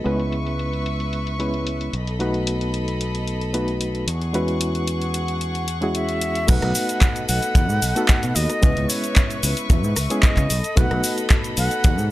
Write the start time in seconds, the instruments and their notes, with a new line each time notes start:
0.04 fingered electric bass C#2, reed electric piano G#3 B3 C#4 E4 B4, string section B4 E5 C#6, closed hi-hat
0.20 closed hi-hat
0.32 closed hi-hat
0.47 closed hi-hat
0.59 closed hi-hat
0.73 closed hi-hat
0.86 closed hi-hat
1.00 closed hi-hat
1.13 closed hi-hat
1.27 closed hi-hat
1.39 reed electric piano G#3 B3 C#4 E4 B4, closed hi-hat
1.54 closed hi-hat
1.67 closed hi-hat
1.81 closed hi-hat
1.93 fingered electric bass B1, string section A4 D#5 B5, closed hi-hat
2.07 closed hi-hat
2.19 reed electric piano A3 B3 D#4 F#4 B4, closed hi-hat
2.34 closed hi-hat
2.47 closed hi-hat
2.61 closed hi-hat
2.74 closed hi-hat
2.88 closed hi-hat
3.01 closed hi-hat
3.15 closed hi-hat
3.28 closed hi-hat
3.41 closed hi-hat
3.54 reed electric piano A3 B3 D#4 F#4 B4, closed hi-hat
3.68 closed hi-hat
3.81 closed hi-hat
3.95 closed hi-hat
4.07 fingered electric bass E2, string section G#4 F#5 C#6, closed hi-hat
4.22 closed hi-hat
4.33 reed electric piano G#3 C#4 E4 F#4 B4, closed hi-hat
4.48 closed hi-hat
4.61 closed hi-hat
4.75 closed hi-hat
4.87 closed hi-hat
5.02 closed hi-hat
5.14 closed hi-hat
5.28 closed hi-hat
5.41 closed hi-hat
5.55 closed hi-hat
5.68 closed hi-hat
5.81 reed electric piano G#3 C#4 E4 F#4 G#4, closed hi-hat
5.95 flute E5, closed hi-hat
6.09 closed hi-hat
6.21 closed hi-hat
6.35 closed hi-hat
6.47 fingered electric bass B1, reed electric piano A3 B3 D#4 F#4 B4, string section A4 D#5 B5, flute F#5, kick, closed hi-hat, crash, cabasa
6.62 fingered electric bass B1, cross-stick, closed hi-hat
6.75 open hi-hat, cabasa
6.89 closed hi-hat, cabasa
7.01 kick, clap, closed hi-hat, cabasa
7.16 closed hi-hat, cabasa
7.28 fingered electric bass B1, flute F#5, open hi-hat, cabasa
7.43 closed hi-hat, cabasa
7.55 fingered electric bass D#2, kick, closed hi-hat, cabasa
7.69 fingered electric bass G#2, cabasa
7.82 fingered electric bass B1, open hi-hat, cabasa
7.95 reed electric piano A3 B3 D#4 F#4 A4, closed hi-hat, cabasa
8.08 kick, clap, closed hi-hat, cabasa
8.23 fingered electric bass B2, closed hi-hat, cabasa
8.35 fingered electric bass D#2, flute D#5, open hi-hat, cabasa
8.50 cross-stick, closed hi-hat, cabasa
8.62 fingered electric bass C#2, reed electric piano G#3 B3 C#4 E4 B4, string section B4 E5 C#6, kick, closed hi-hat, cabasa
8.77 fingered electric bass C#2, closed hi-hat
8.89 flute C#5, open hi-hat, cabasa
9.04 closed hi-hat, cabasa
9.16 kick, clap, closed hi-hat, cabasa
9.30 closed hi-hat, cabasa
9.43 fingered electric bass C#2, open hi-hat, cabasa
9.57 closed hi-hat, cabasa
9.70 fingered electric bass E2, kick, closed hi-hat, cabasa
9.84 fingered electric bass G#2, cabasa
9.96 fingered electric bass C#2, cross-stick, open hi-hat, cabasa
10.10 reed electric piano G#3 B3 C#4 E4 G#4, closed hi-hat, cabasa
10.23 flute D#5, kick, clap, closed hi-hat, cabasa
10.37 fingered electric bass C#3, kick, clap, closed hi-hat, cabasa
10.50 fingered electric bass B1, string section A4 D#5 B5, open hi-hat, cabasa
10.64 closed hi-hat, cabasa
10.76 fingered electric bass B1, reed electric piano A3 B3 D#4 F#4 B4, flute F#5, kick, closed hi-hat, cabasa
10.91 fingered electric bass B1, cross-stick, closed hi-hat
11.04 open hi-hat, cabasa
11.18 closed hi-hat, cabasa
11.30 kick, clap, closed hi-hat, cabasa
11.44 closed hi-hat, cabasa
11.57 fingered electric bass B1, flute F#5, open hi-hat, cabasa
11.71 closed hi-hat, cabasa
11.84 fingered electric bass D#2, kick, closed hi-hat, cabasa
11.98 fingered electric bass G#2, cabasa